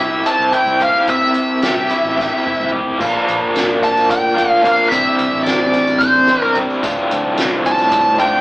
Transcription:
0.00 0.21 C2 medium
0.00 0.53 C3 medium
0.00 0.26 C4 medium
0.00 0.51 E4 medium
0.00 0.79 G4 medium
0.00 0.22 E5 medium
0.26 1.63 C4 medium
0.26 0.54 A5 medium
0.26 closed hi-hat medium
0.39 0.51 C2 medium
0.52 1.90 E4 medium
0.52 0.79 G5 medium
0.52 kick medium
0.52 closed hi-hat medium
0.66 0.90 C2 medium
0.80 1.62 G4 medium
0.80 1.07 F5 medium
0.80 kick medium
0.80 closed hi-hat medium
1.08 2.45 C3 medium
1.08 2.70 E5 medium
1.08 kick medium
1.08 closed hi-hat medium
1.34 closed hi-hat medium
1.63 2.71 G4 medium
1.63 snare loud
1.63 closed hi-hat medium
1.77 1.88 C2 medium
1.90 2.45 E4 medium
1.90 closed hi-hat soft
2.04 2.27 A1 medium
2.17 3.00 C4 medium
2.17 kick loud
2.17 snare medium
2.46 2.93 F1 medium
2.46 3.00 E4 medium
2.46 mid tom medium
2.60 mid tom medium
2.73 3.00 G4 medium
2.73 floor tom medium
2.98 3.12 A#1 medium
2.98 4.34 A#2 medium
2.98 4.35 F3 medium
2.98 4.91 F3 medium
2.98 4.36 A#3 medium
2.98 4.91 A#3 medium
2.98 8.41 D4 medium
2.98 4.36 D4 medium
2.98 4.35 F4 loud
2.98 kick loud
2.98 crash loud
2.98 tambourine medium
3.03 4.33 A#4 medium
3.28 3.40 A#1 medium
3.28 closed hi-hat medium
3.43 4.53 G1 medium
3.54 snare loud
3.54 closed hi-hat medium
3.54 tambourine soft
3.82 4.10 A5 medium
3.82 kick medium
3.82 snare soft
3.82 closed hi-hat medium
3.82 tambourine soft
3.97 tambourine medium
4.10 4.61 G5 loud
4.10 kick loud
4.10 closed hi-hat medium
4.10 tambourine soft
4.35 4.63 F3 medium
4.35 4.63 A#3 medium
4.35 4.65 D4 medium
4.35 4.62 F4 medium
4.35 4.61 A#4 medium
4.35 kick medium
4.35 closed hi-hat medium
4.39 4.62 A#2 medium
4.53 4.75 F1 medium
4.62 4.89 A#2 medium
4.62 4.90 F3 medium
4.62 4.90 A#3 medium
4.62 4.92 D4 medium
4.62 4.91 F4 medium
4.62 4.89 F5 medium
4.62 kick medium
4.62 closed hi-hat medium
4.67 4.91 A#4 medium
4.79 tambourine soft
4.89 5.04 C2 medium
4.89 6.26 C3 medium
4.89 6.82 E3 medium
4.89 6.27 G3 medium
4.89 6.29 C4 medium
4.89 8.41 C4 medium
4.89 6.27 E4 medium
4.89 5.41 E5 medium
4.89 kick loud
4.89 closed hi-hat medium
4.89 tambourine medium
4.93 6.28 G4 medium
4.93 6.31 C5 medium
5.19 5.32 C2 medium
5.19 closed hi-hat medium
5.33 6.42 A1 medium
5.43 6.01 D5 medium
5.43 snare loud
5.43 closed hi-hat medium
5.73 kick medium
5.73 snare soft
5.73 closed hi-hat medium
5.73 tambourine soft
5.87 tambourine medium
5.98 6.43 C5 medium
5.98 kick loud
5.98 snare soft
5.98 closed hi-hat medium
5.98 tambourine soft
6.28 6.54 C3 medium
6.28 6.54 G3 medium
6.28 6.58 C4 medium
6.28 6.55 E4 medium
6.28 6.55 G4 medium
6.28 6.55 C5 medium
6.28 kick medium
6.28 closed hi-hat medium
6.42 6.65 C2 medium
6.42 6.57 A#4 medium
6.55 6.82 C3 medium
6.55 6.83 G3 medium
6.55 6.84 C4 medium
6.55 6.82 E4 medium
6.55 6.82 G4 medium
6.55 6.85 C5 medium
6.55 kick medium
6.55 closed hi-hat medium
6.70 tambourine soft
6.80 8.18 D2 medium
6.80 6.95 D2 medium
6.80 8.18 A2 medium
6.80 8.41 F3 medium
6.80 kick loud
6.80 tambourine loud
6.84 8.19 D3 medium
6.84 8.19 A3 medium
6.84 8.19 C4 medium
6.84 8.18 F4 loud
6.84 closed hi-hat medium
7.11 7.23 D2 medium
7.11 closed hi-hat medium
7.26 8.34 C2 medium
7.38 snare loud
7.38 closed hi-hat medium
7.38 tambourine soft
7.65 8.17 A5 loud
7.65 kick medium
7.65 closed hi-hat medium
7.65 tambourine soft
7.79 tambourine medium
7.92 kick loud
7.92 closed hi-hat medium
7.92 tambourine soft
8.19 8.41 A2 medium
8.19 8.41 D3 medium
8.19 8.41 A3 medium
8.19 8.41 C4 medium
8.19 8.41 F4 medium
8.19 8.41 G5 medium
8.19 kick medium
8.19 closed hi-hat medium
8.23 8.41 D2 medium
8.34 8.41 D2 medium

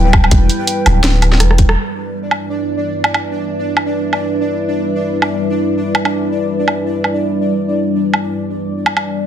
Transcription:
0.00 0.31 D1 loud
0.00 1.73 G3 medium
0.00 1.78 G3 medium
0.00 1.73 E4 medium
0.00 1.73 B4 medium
0.00 1.79 B4 medium
0.00 1.76 G5 medium
0.13 kick loud
0.13 low woodblock medium
0.24 low woodblock medium
0.31 0.48 E1 loud
0.31 kick loud
0.31 closed hi-hat medium
0.49 closed hi-hat soft
0.67 closed hi-hat medium
0.86 1.43 D1 loud
0.86 closed hi-hat soft
0.86 low woodblock medium
1.04 snare loud
1.04 closed hi-hat medium
1.22 closed hi-hat soft
1.22 low woodblock soft
1.33 snare soft
1.40 1.76 E1 loud
1.40 cross-stick medium
1.40 closed hi-hat medium
1.51 cross-stick medium
1.58 kick medium
1.58 closed hi-hat soft
1.69 cross-stick medium
1.77 9.27 G3 medium
1.77 9.27 D4 medium
1.77 9.27 E4 medium
1.77 9.27 B4 medium
1.77 9.27 D5 medium
1.77 7.55 E5 medium
2.31 low woodblock soft
3.04 low woodblock medium
3.14 low woodblock medium
3.77 low woodblock soft
4.13 low woodblock soft
5.22 low woodblock soft
5.95 low woodblock medium
6.05 low woodblock medium
6.68 low woodblock soft
7.04 low woodblock soft
7.58 9.27 D5 medium
8.14 low woodblock soft
8.86 low woodblock medium
8.97 low woodblock medium

